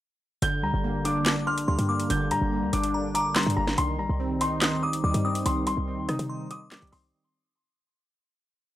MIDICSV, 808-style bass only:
0, 0, Header, 1, 2, 480
1, 0, Start_track
1, 0, Key_signature, -2, "minor"
1, 0, Tempo, 419580
1, 483, Time_signature, 4, 2, 24, 8
1, 10018, End_track
2, 0, Start_track
2, 0, Title_t, "808-style bass"
2, 0, Program_c, 0, 38
2, 483, Note_on_c, 0, 31, 110
2, 723, Note_on_c, 0, 38, 104
2, 740, Note_off_c, 0, 31, 0
2, 837, Note_off_c, 0, 38, 0
2, 843, Note_on_c, 0, 31, 112
2, 1683, Note_on_c, 0, 34, 100
2, 1700, Note_off_c, 0, 31, 0
2, 1803, Note_on_c, 0, 31, 102
2, 1820, Note_off_c, 0, 34, 0
2, 1917, Note_off_c, 0, 31, 0
2, 1923, Note_on_c, 0, 38, 111
2, 2036, Note_off_c, 0, 38, 0
2, 2043, Note_on_c, 0, 43, 103
2, 2388, Note_off_c, 0, 43, 0
2, 2403, Note_on_c, 0, 31, 113
2, 2643, Note_on_c, 0, 46, 102
2, 2660, Note_off_c, 0, 31, 0
2, 2757, Note_off_c, 0, 46, 0
2, 2763, Note_on_c, 0, 31, 109
2, 3003, Note_on_c, 0, 38, 99
2, 3021, Note_off_c, 0, 31, 0
2, 3117, Note_off_c, 0, 38, 0
2, 3123, Note_on_c, 0, 31, 110
2, 3723, Note_on_c, 0, 34, 104
2, 3741, Note_off_c, 0, 31, 0
2, 3951, Note_off_c, 0, 34, 0
2, 3963, Note_on_c, 0, 43, 101
2, 4078, Note_off_c, 0, 43, 0
2, 4083, Note_on_c, 0, 31, 107
2, 4314, Note_off_c, 0, 31, 0
2, 4323, Note_on_c, 0, 36, 111
2, 4563, Note_on_c, 0, 34, 98
2, 4580, Note_off_c, 0, 36, 0
2, 4677, Note_off_c, 0, 34, 0
2, 4683, Note_on_c, 0, 36, 112
2, 5403, Note_on_c, 0, 38, 101
2, 5420, Note_off_c, 0, 36, 0
2, 5583, Note_on_c, 0, 36, 98
2, 5600, Note_off_c, 0, 38, 0
2, 5754, Note_off_c, 0, 36, 0
2, 5763, Note_on_c, 0, 39, 108
2, 5878, Note_off_c, 0, 39, 0
2, 5883, Note_on_c, 0, 43, 103
2, 6229, Note_off_c, 0, 43, 0
2, 6243, Note_on_c, 0, 36, 110
2, 6484, Note_on_c, 0, 34, 98
2, 6501, Note_off_c, 0, 36, 0
2, 6598, Note_off_c, 0, 34, 0
2, 6604, Note_on_c, 0, 36, 107
2, 6843, Note_on_c, 0, 39, 100
2, 6860, Note_off_c, 0, 36, 0
2, 6957, Note_off_c, 0, 39, 0
2, 6963, Note_on_c, 0, 48, 106
2, 7078, Note_off_c, 0, 48, 0
2, 7083, Note_on_c, 0, 48, 104
2, 7774, Note_off_c, 0, 48, 0
2, 7804, Note_on_c, 0, 36, 105
2, 7919, Note_off_c, 0, 36, 0
2, 7923, Note_on_c, 0, 36, 106
2, 8154, Note_off_c, 0, 36, 0
2, 10018, End_track
0, 0, End_of_file